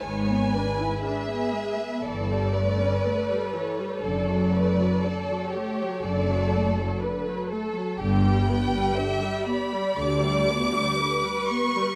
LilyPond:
<<
  \new Staff \with { instrumentName = "Violin section" } { \time 4/4 \key d \major \tempo 4 = 60 gis''4 e''4 d''4. cis''8 | d''4. cis''8 d''4 r4 | g''4. b''8 d'''4. cis'''8 | }
  \new Staff \with { instrumentName = "Violin section" } { \time 4/4 \key d \major cis''8 b'8 gis'4 a'8 b'4. | a'8 b'8 a'8 g'8 a'4 b'8 a'8 | g'8 b'8 e''8 d''4. b'4 | }
  \new Staff \with { instrumentName = "Viola section" } { \clef bass \time 4/4 \key d \major << { b'2 a'2~ | a'1 | g'1 | } \\ { gis16 b16 d'16 e'16 d'16 b16 gis16 b16 e16 g16 a16 cis'16 a16 g16 e16 g16 | d16 fis16 a16 fis16 d16 fis16 a16 fis16 d16 fis16 a16 fis16 d16 fis16 a16 fis16 | d16 g16 b16 g16 d16 g16 b16 g16 d16 g16 b16 g16 d16 g16 b16 g16 | } >> }
  \new Staff \with { instrumentName = "Cello section" } { \clef bass \time 4/4 \key d \major gis,4 r4 g,4 r4 | fis,4 r4 fis,4 r4 | g,4 r4 d,4 r4 | }
  \new Staff \with { instrumentName = "Double bass section" } { \clef bass \time 4/4 \key d \major gis,,4 r4 g,,4 r4 | fis,,4 r4 fis,,4 r4 | g,,4 r4 d,4 r4 | }
>>